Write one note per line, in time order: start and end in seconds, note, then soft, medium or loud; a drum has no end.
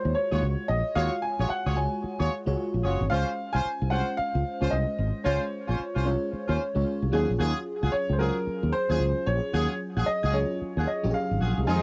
0.00 0.31 G#3 medium
0.00 0.32 F4 medium
0.00 0.32 F#4 medium
0.00 0.16 C5 medium
0.00 0.33 C#5 loud
0.05 0.13 D#2 medium
0.15 0.65 C#5 medium
0.31 0.40 D#2 medium
0.31 0.90 G#3 medium
0.31 0.44 F4 medium
0.31 0.90 F4 medium
0.31 0.44 F#4 medium
0.31 0.91 F#4 medium
0.31 0.44 G#4 medium
0.31 0.44 C#5 medium
0.31 0.91 C#5 medium
0.43 0.55 C#2 loud
0.68 0.81 A#1 medium
0.68 0.96 D#5 loud
0.96 1.08 D#2 loud
0.96 1.70 G#3 medium
0.96 1.13 F4 medium
0.96 1.70 F4 medium
0.96 1.13 F#4 medium
0.96 1.70 F#4 medium
0.96 1.14 G#4 medium
0.96 1.14 C#5 loud
0.96 1.70 C#5 medium
0.96 1.21 F5 loud
1.22 1.50 G#5 loud
1.39 1.47 A#1 medium
1.39 1.51 F4 medium
1.39 1.51 F#4 medium
1.39 1.51 G#4 medium
1.39 1.52 C#5 medium
1.49 1.74 F#5 loud
1.49 muted fretless electric bass stroke soft
1.66 1.86 C#2 medium
1.66 1.78 F4 medium
1.66 1.78 F#4 medium
1.66 1.78 G#4 medium
1.66 1.78 C#5 medium
1.76 2.37 G#3 medium
1.76 2.38 F4 medium
1.76 2.38 F#4 medium
1.76 2.38 C#5 medium
1.76 2.26 G#5 medium
2.04 muted fretless electric bass stroke soft
2.19 2.27 D#2 medium
2.19 2.32 F4 medium
2.19 2.32 F#4 medium
2.19 2.32 G#4 medium
2.19 2.32 C#5 medium
2.46 2.54 C#2 medium
2.46 3.05 G#3 medium
2.46 3.05 F4 medium
2.46 3.05 F#4 medium
2.46 3.05 C#5 loud
2.74 2.81 A#1 medium
2.83 2.96 F#1 medium
2.83 3.01 F4 medium
2.83 3.01 F#4 medium
2.83 3.01 G#4 medium
2.83 3.01 C#5 medium
3.00 3.08 G#1 medium
3.10 3.23 C#2 loud
3.10 3.84 G#3 medium
3.10 3.28 C#4 loud
3.10 3.84 C#4 medium
3.10 3.28 F4 medium
3.10 3.84 F4 medium
3.10 3.28 C5 loud
3.10 3.85 C5 medium
3.10 3.54 F5 loud
3.52 3.62 C2 medium
3.52 3.66 C#4 medium
3.52 3.66 F4 medium
3.52 3.66 C5 medium
3.52 3.91 G#5 loud
3.65 muted fretless electric bass stroke soft
3.81 4.01 C2 medium
3.90 4.52 G#3 medium
3.90 4.08 C#4 medium
3.90 4.52 C#4 medium
3.90 4.08 F4 medium
3.90 4.52 F4 medium
3.90 4.08 C5 medium
3.90 4.52 C5 medium
3.90 4.15 F#5 medium
4.17 4.73 F5 loud
4.17 muted fretless electric bass stroke soft
4.35 4.42 C#2 medium
4.60 4.69 C#2 medium
4.60 5.19 G#3 medium
4.60 4.73 C#4 medium
4.60 5.19 C#4 medium
4.60 4.73 F4 medium
4.60 5.19 F4 medium
4.60 4.73 C5 medium
4.60 5.20 C5 medium
4.70 4.84 C2 medium
4.70 5.26 D#5 medium
4.98 5.10 G#1 medium
5.24 5.37 C#2 loud
5.24 5.98 G#3 medium
5.24 5.42 C#4 medium
5.24 5.98 C#4 medium
5.24 5.42 F4 medium
5.24 5.98 F4 medium
5.24 5.42 C5 loud
5.24 7.08 C#5 medium
5.24 5.99 C#5 medium
5.67 5.76 A#1 medium
5.67 5.80 C#4 medium
5.67 5.80 F4 medium
5.67 5.80 C5 medium
5.95 6.15 C2 medium
5.95 6.07 C#4 medium
5.95 6.07 F4 medium
5.95 6.07 C5 medium
6.05 6.66 G#3 medium
6.05 6.66 C#4 medium
6.05 6.66 F4 medium
6.05 6.67 C#5 loud
6.33 muted fretless electric bass stroke soft
6.48 6.56 D#2 medium
6.48 6.60 C#4 medium
6.48 6.60 F4 medium
6.48 6.60 C5 medium
6.75 6.83 C#2 medium
6.75 7.12 G#3 medium
6.75 7.11 C#4 medium
6.75 7.11 F4 medium
6.75 7.13 C#5 loud
7.02 7.10 C2 medium
7.12 7.24 D#2 loud
7.12 8.10 F#3 medium
7.12 8.10 C#4 medium
7.12 7.30 C#4 medium
7.12 7.30 F4 medium
7.12 8.11 F4 medium
7.12 7.30 F#4 medium
7.12 7.30 G#4 medium
7.12 8.11 G#4 loud
7.29 7.37 A#1 medium
7.39 7.51 D#2 loud
7.39 7.56 C#4 medium
7.39 7.56 F4 medium
7.39 7.56 F#4 medium
7.39 7.57 G#4 loud
7.82 7.90 C#2 loud
7.82 7.94 C#4 medium
7.82 7.94 F4 medium
7.82 7.94 F#4 medium
7.82 7.94 G#4 medium
7.92 8.12 C#5 loud
8.09 8.29 C#2 medium
8.09 8.19 C5 medium
8.19 8.80 F#3 medium
8.19 8.37 C#4 medium
8.19 8.81 C#4 medium
8.19 8.37 F4 medium
8.19 8.81 F4 medium
8.19 8.37 F#4 medium
8.19 8.37 G#4 medium
8.19 8.81 G#4 medium
8.19 8.74 A#4 medium
8.47 muted fretless electric bass stroke soft
8.63 8.70 D#2 medium
8.72 9.28 C5 loud
8.89 8.97 D#2 medium
8.89 9.47 F#3 medium
8.89 9.48 C#4 medium
8.89 9.01 C#4 medium
8.89 9.01 F4 medium
8.89 9.48 F4 medium
8.89 9.02 F#4 medium
8.89 9.02 G#4 medium
8.89 9.48 G#4 medium
9.00 9.12 C#2 medium
9.26 9.39 A#1 loud
9.26 9.76 C#5 loud
9.53 9.65 D#2 loud
9.53 10.27 F#3 medium
9.53 9.71 C#4 medium
9.53 10.27 C#4 medium
9.53 9.71 F4 medium
9.53 10.27 F4 medium
9.53 9.71 F#4 medium
9.53 9.71 G#4 loud
9.53 10.27 G#4 medium
9.96 10.04 A#1 medium
9.96 10.08 C#4 medium
9.96 10.08 F4 medium
9.96 10.09 F#4 medium
9.96 10.09 G#4 medium
10.06 10.34 D#5 loud
10.23 10.43 C#2 medium
10.23 10.35 C#4 medium
10.23 10.35 F4 medium
10.23 10.35 F#4 medium
10.23 10.35 G#4 medium
10.33 10.94 F#3 medium
10.33 10.95 C#4 medium
10.33 10.95 F4 medium
10.33 10.95 G#4 medium
10.33 11.10 C#5 medium
10.61 muted fretless electric bass stroke soft
10.76 10.85 D#2 medium
10.76 10.89 C#4 medium
10.76 10.89 F4 medium
10.76 10.89 F#4 medium
10.76 10.89 G#4 medium
10.87 11.15 D#5 medium
11.03 11.12 A#1 medium
11.03 11.62 F#3 medium
11.03 11.62 C#4 medium
11.03 11.62 F4 medium
11.03 11.09 G4 medium
11.11 11.66 G#4 loud
11.11 11.69 F5 medium
11.31 11.38 G#1 medium
11.40 11.53 A#1 medium
11.40 11.58 C#4 medium
11.40 11.58 F4 medium
11.40 11.58 F#4 medium
11.40 11.58 G#4 medium
11.58 11.65 C2 medium
11.67 11.80 F2 loud
11.67 11.82 D#3 medium
11.67 11.82 F3 medium
11.67 11.82 G#3 medium
11.67 11.82 C4 medium
11.67 11.82 D#4 medium
11.67 11.82 F4 medium
11.67 11.82 G#4 loud
11.67 11.82 G#5 medium